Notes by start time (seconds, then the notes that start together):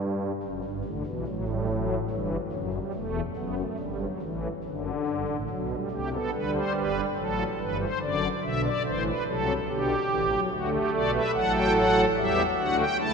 Already playing: G2
0.43 F#1 F#2
0.64 G1 G2
0.85 A1 A2 D3
1.06 B1 B2 E3
1.27 A1 A2 F#3
1.48 G3
1.69 F#3
2.10 G1 G2 E3
2.52 F#1 F#2 F#3
2.73 G3
2.94 E1 E2 A3
3.36 F#1 F#2 B3
3.58 A3
3.79 G1 G2 G3
4.00 F#3
4.21 A1 A2 E3
4.64 F#1 F#2 D3
5.06 G1 G2
5.27 A1 A2
5.49 B1 B2 F#3
5.70 G3
5.91 C2 C3 A3 G4
6.12 B3 A4
6.33 D2 D3 G3 B4
6.54 C5
6.75 G1 G2 B4
7.17 A1 A2 F#3 A4
7.59 G1 G2 E3 B4
7.80 C5
8.01 F#1 F#2 D3 D5
8.43 B1 B2 D3 E5
8.64 D5
8.85 A1 A2 E3 C5
9.05 B4
9.26 C2 C3 F#3 A4
9.68 B1 B2 D3 G4
10.10 A1 A2 E3
10.30 F#3
10.51 D2 D3 A3 F#4
10.72 G4
10.93 B1 B2 A4 D5
11.13 B4 E5
11.34 A1 A2 F#3 A4 F#5
11.54 G5
11.75 F#5
12.16 E2 E3 G3 G4 E5
12.58 D2 D3 A3 F#4 F#5
12.78 G5
12.99 C#2 C#3 A3 E4 A5